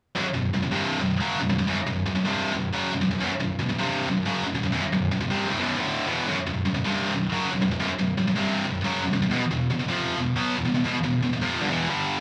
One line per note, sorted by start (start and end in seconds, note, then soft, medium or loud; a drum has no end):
0.16 0.24 B1 loud
0.16 0.25 F#2 loud
0.26 muted distorted electric guitar stroke medium
0.34 0.49 B1 medium
0.34 0.50 F#2 medium
0.54 0.62 B1 medium
0.54 0.62 F#2 medium
0.63 0.71 B1 medium
0.63 0.71 F#2 medium
0.72 1.00 C2 loud
0.72 1.00 G2 loud
0.72 1.00 C3 loud
1.01 1.16 B1 medium
1.01 1.16 F#2 medium
1.20 1.39 F#2 medium
1.20 1.39 C#3 medium
1.20 1.39 F#3 medium
1.40 1.48 B1 medium
1.40 1.48 F#2 medium
1.49 1.57 B1 medium
1.49 1.58 F#2 medium
1.58 1.66 B1 medium
1.58 1.67 F#2 medium
1.67 1.77 B1 loud
1.67 1.77 F#2 loud
1.78 muted distorted electric guitar stroke medium
1.87 2.02 B1 medium
1.87 2.02 F#2 medium
2.06 2.14 B1 medium
2.06 2.14 F#2 medium
2.15 2.25 B1 medium
2.15 2.25 F#2 medium
2.25 2.53 C2 medium
2.25 2.54 G2 loud
2.25 2.54 C3 loud
2.54 2.69 B1 medium
2.54 2.69 F#2 medium
2.73 2.92 F#2 medium
2.73 2.92 C#3 medium
2.73 2.92 F#3 loud
2.92 3.00 B1 medium
2.92 3.00 F#2 medium
3.01 3.09 B1 medium
3.01 3.09 F#2 medium
3.11 3.19 B1 medium
3.11 3.20 F#2 medium
3.20 3.28 B1 loud
3.20 3.30 F#2 loud
3.30 muted distorted electric guitar stroke medium
3.40 3.55 B1 medium
3.40 3.55 F#2 medium
3.59 3.68 B1 medium
3.59 3.68 F#2 medium
3.69 3.78 B1 medium
3.69 3.78 F#2 medium
3.78 4.06 C2 medium
3.78 4.07 G2 loud
3.78 4.07 C3 loud
4.07 4.22 B1 medium
4.07 4.22 F#2 medium
4.25 4.43 F#2 medium
4.25 4.44 C#3 medium
4.25 4.45 F#3 medium
4.44 4.53 B1 medium
4.44 4.53 F#2 medium
4.55 4.62 B1 medium
4.55 4.62 F#2 medium
4.63 4.71 B1 medium
4.63 4.71 F#2 medium
4.72 4.81 B1 loud
4.72 4.82 F#2 loud
4.83 muted distorted electric guitar stroke medium
4.93 5.08 B1 medium
4.93 5.08 F#2 medium
5.11 5.19 B1 medium
5.11 5.20 F#2 medium
5.21 5.30 B1 medium
5.21 5.30 F#2 medium
5.30 5.49 C2 medium
5.30 5.49 G2 medium
5.30 5.50 C3 loud
5.49 5.59 D2 medium
5.49 5.59 A2 medium
5.60 5.78 B1 medium
5.60 5.78 F#2 medium
5.60 5.79 B2 medium
5.78 6.06 D2 medium
5.78 6.07 A2 medium
5.78 6.07 D3 medium
6.07 6.26 E2 medium
6.07 6.26 B2 medium
6.07 6.26 E3 medium
6.26 6.35 B1 loud
6.26 6.36 F#2 loud
6.36 muted distorted electric guitar stroke medium
6.46 6.61 B1 medium
6.46 6.62 F#2 medium
6.65 6.73 B1 medium
6.65 6.73 F#2 medium
6.74 6.84 B1 medium
6.74 6.84 F#2 medium
6.84 7.12 C2 medium
6.84 7.13 G2 loud
6.84 7.13 C3 loud
7.13 7.28 B1 medium
7.13 7.28 F#2 medium
7.32 7.50 F#2 medium
7.32 7.51 C#3 medium
7.32 7.51 F#3 loud
7.52 7.60 B1 medium
7.52 7.61 F#2 medium
7.61 7.70 B1 medium
7.61 7.70 F#2 medium
7.71 7.79 B1 medium
7.71 7.79 F#2 medium
7.80 7.88 B1 loud
7.80 7.89 F#2 loud
7.89 muted distorted electric guitar stroke medium
7.99 8.14 B1 medium
7.99 8.14 F#2 medium
8.18 8.26 B1 medium
8.18 8.26 F#2 medium
8.28 8.35 B1 medium
8.28 8.36 F#2 medium
8.36 8.64 C2 loud
8.36 8.65 G2 loud
8.36 8.65 C3 loud
8.65 8.81 B1 medium
8.65 8.81 F#2 medium
8.84 9.03 F#2 medium
8.84 9.03 C#3 loud
8.84 9.04 F#3 loud
9.04 9.12 B1 medium
9.04 9.12 F#2 medium
9.13 9.21 B1 medium
9.13 9.21 F#2 medium
9.22 9.30 B1 medium
9.22 9.32 F#2 medium
9.31 9.39 E2 loud
9.31 9.41 B2 loud
9.41 muted distorted electric guitar stroke medium
9.51 9.67 E2 medium
9.51 9.67 B2 medium
9.70 9.78 E2 medium
9.70 9.79 B2 medium
9.79 9.88 E2 medium
9.79 9.88 B2 medium
9.88 10.16 F2 medium
9.88 10.17 C3 loud
9.88 10.18 F3 loud
10.17 10.33 E2 medium
10.17 10.33 B2 medium
10.36 10.55 B2 medium
10.36 10.56 F#3 medium
10.36 10.56 B3 medium
10.56 10.64 E2 medium
10.56 10.64 B2 medium
10.65 10.73 E2 medium
10.65 10.74 B2 medium
10.74 10.83 E2 medium
10.74 10.83 B2 medium
10.84 10.93 E2 loud
10.84 10.94 B2 loud
10.95 muted distorted electric guitar stroke medium
11.03 11.19 E2 medium
11.03 11.20 B2 medium
11.22 11.32 E2 medium
11.22 11.32 B2 medium
11.33 11.41 E2 medium
11.33 11.41 B2 medium
11.41 11.60 F2 loud
11.41 11.61 C3 loud
11.41 11.62 F3 loud
11.61 11.70 G2 medium
11.61 11.71 D3 loud
11.70 11.89 E2 medium
11.70 11.89 B2 loud
11.70 11.90 E3 loud
11.89 12.18 G2 medium
11.89 12.19 D3 medium
11.89 12.19 G3 medium